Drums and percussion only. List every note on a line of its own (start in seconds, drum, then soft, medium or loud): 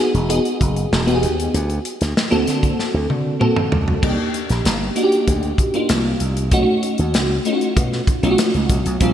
0.15 closed hi-hat soft
0.30 closed hi-hat medium
0.45 closed hi-hat soft
0.61 kick medium
0.61 closed hi-hat medium
0.76 closed hi-hat soft
0.93 snare loud
1.08 closed hi-hat soft
1.23 closed hi-hat medium
1.40 closed hi-hat medium
1.54 closed hi-hat medium
1.70 closed hi-hat soft
1.85 closed hi-hat medium
2.01 snare soft
2.01 closed hi-hat soft
2.17 snare medium
2.32 closed hi-hat soft
2.47 snare soft
2.47 closed hi-hat medium
2.63 kick medium
2.63 closed hi-hat soft
2.79 snare medium
3.10 high tom medium
3.41 mid tom medium
3.56 mid tom medium
3.72 floor tom medium
3.88 floor tom medium
4.03 kick loud
4.03 crash medium
4.34 closed hi-hat medium
4.50 snare soft
4.50 closed hi-hat medium
4.65 snare medium
4.65 closed hi-hat medium
4.96 closed hi-hat medium
5.12 closed hi-hat soft
5.28 kick medium
5.28 closed hi-hat medium
5.43 closed hi-hat soft
5.58 kick medium
5.58 closed hi-hat medium
5.74 closed hi-hat soft
5.89 snare loud
5.89 closed hi-hat loud
6.20 closed hi-hat medium
6.37 closed hi-hat medium
6.51 kick loud
6.51 closed hi-hat medium
6.83 closed hi-hat medium
6.98 closed hi-hat soft
7.14 snare loud
7.14 closed hi-hat medium
7.45 closed hi-hat medium
7.61 closed hi-hat soft
7.77 kick medium
7.77 closed hi-hat medium
7.93 snare soft
8.07 kick medium
8.07 closed hi-hat medium
8.23 closed hi-hat soft
8.38 snare loud
8.38 closed hi-hat loud
8.54 closed hi-hat soft
8.69 kick medium
8.69 closed hi-hat medium
8.86 closed hi-hat medium
9.01 kick loud
9.01 closed hi-hat medium